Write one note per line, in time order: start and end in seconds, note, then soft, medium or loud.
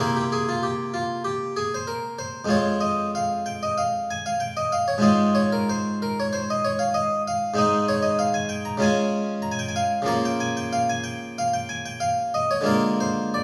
0.00 2.45 C3 soft
0.00 2.46 A#3 soft
0.00 2.46 C4 soft
0.00 2.47 E4 soft
0.00 0.15 A#4 medium
0.16 0.32 G4 medium
0.32 0.47 G#4 medium
0.49 0.63 F4 medium
0.63 0.94 G4 medium
0.94 1.21 F4 medium
1.24 1.57 G4 medium
1.56 1.73 G#4 medium
1.74 1.89 C5 medium
1.87 2.19 A#4 medium
2.19 2.50 C5 medium
2.45 4.97 F2 soft
2.45 4.97 G#3 soft
2.45 4.98 C4 soft
2.45 4.99 F4 soft
2.50 2.78 C#5 medium
2.81 3.09 D#5 medium
3.15 3.47 F5 medium
3.46 3.62 G5 medium
3.63 3.79 D#5 medium
3.78 4.10 F5 medium
4.11 4.26 G#5 loud
4.26 4.42 F5 medium
4.40 4.57 G5 loud
4.57 4.73 D#5 medium
4.72 4.88 F5 loud
4.88 5.04 C#5 medium
4.98 7.50 G#2 medium
4.98 7.50 G#3 soft
4.98 7.51 C4 soft
4.98 7.51 F4 soft
5.02 5.35 D#5 medium
5.35 5.51 C#5 medium
5.52 5.68 A#4 medium
5.69 5.96 C5 medium
6.02 6.17 A#4 medium
6.20 6.33 C#5 medium
6.33 6.48 C5 loud
6.50 6.64 D#5 medium
6.65 6.79 C#5 loud
6.79 6.94 F5 medium
6.94 7.21 D#5 loud
7.28 7.53 F5 medium
7.54 8.77 G#2 medium
7.54 8.78 G#3 medium
7.54 8.78 C4 soft
7.54 8.79 D#4 soft
7.58 7.89 D#5 loud
7.88 8.04 C#5 loud
8.02 8.19 D#5 medium
8.19 8.35 F5 loud
8.34 8.50 G#5 loud
8.49 8.66 G5 medium
8.65 8.82 A#5 medium
8.77 10.01 C#3 medium
8.77 10.02 G#3 medium
8.77 10.03 C#4 soft
8.77 10.03 F4 soft
8.82 9.33 G#5 loud
9.42 9.51 A#5 loud
9.52 9.59 G#5 loud
9.59 9.68 G5 medium
9.69 9.77 G#5 loud
9.76 10.08 F5 loud
10.02 12.60 C#3 medium
10.02 12.61 F3 medium
10.02 12.62 A#3 medium
10.06 12.62 F4 medium
10.06 10.24 A#5 loud
10.25 10.40 G5 loud
10.40 10.56 G#5 loud
10.57 10.73 G5 loud
10.73 10.89 F5 loud
10.89 11.05 G#5 loud
11.04 11.37 G5 loud
11.38 11.54 F5 loud
11.54 11.70 G5 loud
11.69 11.86 G#5 loud
11.86 12.02 G5 medium
12.00 12.33 F5 loud
12.34 12.51 D#5 loud
12.51 12.67 C#5 loud
12.61 13.44 D3 medium
12.61 13.44 G#3 soft
12.61 13.44 A#3 medium
12.65 13.44 F4 soft
12.65 13.00 A#4 loud
13.00 13.33 C5 loud
13.34 13.44 D5 loud